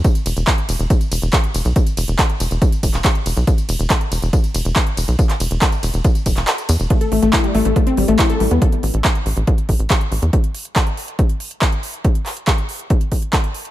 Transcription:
<<
  \new Staff \with { instrumentName = "Synth pluck" } { \time 4/4 \key e \minor \tempo 4 = 140 r1 | r1 | r1 | r1 |
a16 a'16 a16 a16 e'16 g16 a16 a16 a16 c'16 g16 a16 e'16 a'16 g16 b16 | r1 | r1 | r1 | }
  \new Staff \with { instrumentName = "Analog synth bass" } { \clef bass \time 4/4 \key e \minor r8 e,,16 e,,16 r8 e,,16 e,,16 r8 e,,16 e,,16 r8 e,,16 b,,16 | r8 e,,16 e,,16 r8 e,,16 e,,16 r8 e,,16 e,,16 r8 e,,16 b,,16 | r8 e,,16 e,,16 r8 e,,16 e,,16 r8 e,,16 e,,16 r8 e,,16 b,,16 | r8 e,,16 e,,16 r8 e,,16 e,,16 r8 e,,16 e,,16 r8 e,16 e,,16 |
r8 a,,16 a,,16 r8 a,,16 a,,16 r8 a,,16 a,,16 r8 a,,16 e,16 | r8 a,,16 a,,16 r8 a,,16 a,,16 r8 a,,16 a,,16 r8 a,,16 e,16 | r1 | r1 | }
  \new DrumStaff \with { instrumentName = "Drums" } \drummode { \time 4/4 <hh bd tamb>16 <hh tamb>16 <hho cymr tamb>16 <hh tamb>16 <hc hh bd tamb>16 hh16 <hho cymr tamb>16 <hh tamb>16 <hh bd tamb>16 <hh tamb>16 <hho cymr tamb>16 <hh tamb>16 <hc hh bd tamb>16 hh16 <hho cymr tamb>16 <hh tamb>16 | <hh bd tamb>16 <hh tamb>16 <hho cymr tamb>16 <hh tamb>16 <hc hh bd tamb>16 hh16 <hho cymr tamb>16 <hh tamb>16 <hh bd tamb>16 <hh tamb>16 <hho bd cymr tamb>16 <hc hh tamb>16 <hc hh bd tamb>16 hh16 <hho cymr tamb>16 <hh tamb>16 | <hh bd tamb>16 <hh tamb>16 <hho cymr tamb>16 <hh tamb>16 <hc hh bd tamb>16 hh16 <hho cymr tamb>16 <hh tamb>16 <hh bd tamb>16 <hh tamb>16 <hho cymr tamb>16 <hh tamb>16 <hc hh bd tamb>16 hh16 <hho cymr tamb>16 <hh tamb>16 | <hh bd tamb>16 <hc hh tamb>16 <hho cymr tamb>16 <hh tamb>16 <hc hh bd tamb>16 <hh tamb>16 <hho cymr tamb>16 <hh tamb>16 <hh bd tamb>16 <hh tamb>16 <hho bd cymr tamb>16 <hc hh tamb>16 <hc hh tamb>16 <hh tamb>16 <hho cymr tamb>16 <hh tamb>16 |
<hh bd>16 hh16 hho16 hh16 <hc hh bd>16 hh16 hho16 hh16 <hh bd>16 hh16 hho16 hh16 <hc hh bd>16 hh16 hho16 hh16 | <hh bd>16 hh16 hho16 hh16 <hc hh bd>16 hh16 hho16 hh16 <hh bd>16 hh16 <hho bd>16 hh16 <hc hh bd>16 hh16 hho16 hh16 | <hh bd>16 hh16 hho16 hh16 <hc hh bd>16 hh16 hho16 hh16 <hh bd>16 hh16 hho16 hh16 <hc hh bd>16 hh16 hho16 hh16 | <hh bd>16 hh16 <hc hho>16 hh16 <hc hh bd>16 hh16 hho16 hh16 <hh bd>16 hh16 <hho bd>16 hh16 <hc hh bd>16 hh16 hho16 hh16 | }
>>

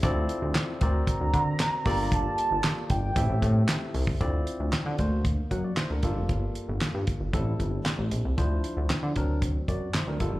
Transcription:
<<
  \new Staff \with { instrumentName = "Soft synth lead" } { \time 4/4 \key d \minor \tempo 4 = 115 r4. bes''2~ bes''8 | a''4. g''2 r8 | r1 | r1 |
r1 | }
  \new Staff \with { instrumentName = "Tine electric piano" } { \time 4/4 \key d \minor << { r1 | r1 | r2 r8 <bes' fis''>16 <fis' d''>16 <e' c''>16 <d' bes'>8 r16 | r1 |
r2 r8 <fis' d''>8 <e' c''>16 <d' bes'>8 r16 | } \\ { <c' e' f' a' d''>4. <c' fis' bes' c'' d''>2 <bes f' g' a' d''>8~ | <bes f' g' a' d''>2 <c' e' g' a' e''>2 | <c' e' f' d''>4. <bes d' fis' c''>2 <g bes f' a'>8~ | <g bes f' a'>2 <g c' e' a'>2 |
<f d' e' c''>4. <fis c' d' bes'>2 <g bes f' a'>8 | } >> }
  \new Staff \with { instrumentName = "Analog synth bass" } { \clef bass \time 4/4 \key d \minor d,8 r16 d,16 r8 d,8 r16 d,16 d8 r8 g,,8~ | g,,8 r16 g,,16 r8 g,,8 a,,16 a,,16 a,8 r8 c,8 | d,8 r16 d,16 d16 d16 d,4 fis,8 r16 d,16 g,,16 f,,16 | g,,8 r16 g,,16 g,16 g,16 r16 g,,16 a,,8 g,,8 r16 a,,16 bes,,16 c,16 |
d,8 r16 d,16 d16 d16 d,4 fis,8 r16 d,16 g,,16 f,,16 | }
  \new DrumStaff \with { instrumentName = "Drums" } \drummode { \time 4/4 <hh bd>8 hh8 <hc hh sn>8 <hh bd>8 <hh bd>8 <hh bd>8 <hc hh sn>8 <hho bd>8 | <hh bd>8 hh8 <hc hh sn>8 <hh bd>8 <hh bd>8 <hh bd>8 <hc hh sn>8 hho16 bd16 | <hh bd>8 hh8 <hc hh sn>8 <hh bd>8 <hh bd>8 <hh bd>8 <hc hh sn>8 <hh bd>8 | <hh bd>8 hh8 <hc hh sn>8 <hh bd>8 <hh bd>8 <hh bd>8 <hc hh sn>8 hh8 |
<hh bd>8 hh8 <hc hh sn>8 <hh bd>8 <hh bd>8 <hh bd>8 <hc hh sn>8 <hh bd>8 | }
>>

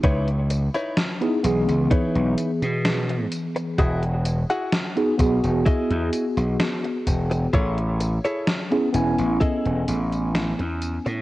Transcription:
<<
  \new Staff \with { instrumentName = "Clean electric guitar" } { \time 4/4 \key e \major \tempo 4 = 64 <dis' e' b' cis''>16 r8 <dis' e' b' cis''>16 r4 <dis' e' b' cis''>8 r4. | <e' fis' gis' dis''>16 r8 <e' fis' gis' fis''>16 r4 <e' fis' gis' dis''>8 r4. | <e' gis' a' cis''>16 r8 <e' gis' a' cis''>16 r4 <e' gis' a' dis''>8 r4. | }
  \new Staff \with { instrumentName = "Tine electric piano" } { \time 4/4 \key e \major r4 r16 <b dis' e' gis'>16 <e b gis'>2~ <e b gis'>8 | r4 r16 <b dis' fis' gis'>16 <b fis' gis'>2~ <b fis' gis'>8 | r4 r16 <b cis' e' gis'>16 <b cis' e' gis''>2~ <b cis' e' gis''>8 | }
  \new Staff \with { instrumentName = "Slap bass" } { \clef bass \time 4/4 \key e \major cis,8. r8. b,,16 cis,16 r16 b,,16 r16 b,8. r8 | e,,8. r8. b,,16 e,,16 r16 e,16 r16 b,,16 r8 e,,8 | a,,8. r8. e,,16 a,,16 r16 e,,16 a,,8. e,8 a,16 | }
  \new DrumStaff \with { instrumentName = "Drums" } \drummode { \time 4/4 <hh bd tamb>16 hh16 <hh tamb>16 <hh tamb>16 <hh sn tamb>16 hh16 <hh tamb>16 <hh tamb>16 <hh bd tamb>16 hh16 <hh tamb>16 <hh tamb>16 <hh sn tamb>16 hh16 <hh tamb>16 <hh tamb>16 | <hh bd tamb>16 hh16 <hh tamb>16 <hh tamb>16 <hh sn tamb>16 hh16 <hh bd tamb>16 <hh tamb>16 <hh bd tamb>16 hh16 <hh tamb>16 <hh tamb>16 <hh sn tamb>16 hh16 <hh bd tamb>16 <hh tamb>16 | <hh bd tamb>16 hh16 <hh tamb>16 <hh tamb>16 <hh sn tamb>16 hh16 <hh tamb>16 <hh tamb>16 <hh bd tamb>16 hh16 <hh tamb>16 <hh tamb>16 <hh sn tamb>16 hh16 <hh tamb>16 <hh tamb>16 | }
>>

